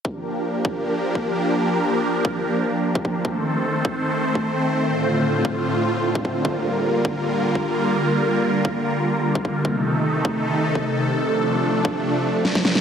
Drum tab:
SD |----------------|----------------|----------------|----------------|
BD |o-----o----o----|------o------oo-|o-----o----o----|------o------oo-|

SD |----------------|----------------|----------------|------------oooo|
BD |o-----o----o----|------o------oo-|o-----o----o----|------o------oo-|